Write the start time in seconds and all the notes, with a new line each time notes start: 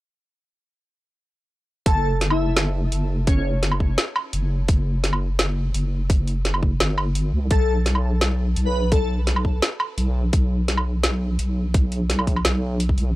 1.86 F#1 A4, kick, closed hi-hat
2.21 snare, closed hi-hat
2.30 E4, low woodblock
2.57 snare, closed hi-hat
2.92 F#1, closed hi-hat
3.27 C#4, kick, closed hi-hat
3.37 C#4
3.63 snare, closed hi-hat
3.72 low woodblock
3.80 kick
3.98 snare, closed hi-hat
4.16 low woodblock
4.33 F#1, closed hi-hat
4.68 F#1, kick, closed hi-hat
5.04 snare, closed hi-hat
5.13 low woodblock
5.39 snare, closed hi-hat
5.74 F#1, closed hi-hat
6.10 kick, closed hi-hat
6.28 closed hi-hat
6.45 snare, closed hi-hat
6.54 low woodblock
6.63 kick
6.80 G1, snare, closed hi-hat
6.98 low woodblock
7.15 closed hi-hat
7.33 C#2
7.51 B1 A4, kick, closed hi-hat
7.86 snare, closed hi-hat
7.95 low woodblock
8.21 snare, closed hi-hat
8.56 B1, closed hi-hat
8.65 B4
8.92 A4, kick, closed hi-hat
9.02 A4
9.27 snare, closed hi-hat
9.36 low woodblock
9.45 kick
9.62 snare, closed hi-hat
9.80 low woodblock
9.98 B1, closed hi-hat
10.33 B1, kick, closed hi-hat
10.68 snare, closed hi-hat
10.77 low woodblock
11.04 snare, closed hi-hat
11.39 B1, closed hi-hat
11.74 kick, closed hi-hat
11.92 closed hi-hat
12.10 snare, closed hi-hat
12.19 low woodblock
12.27 kick, closed hi-hat
12.36 low woodblock
12.45 B1, snare, closed hi-hat
12.80 closed hi-hat
12.89 kick
12.98 B1, closed hi-hat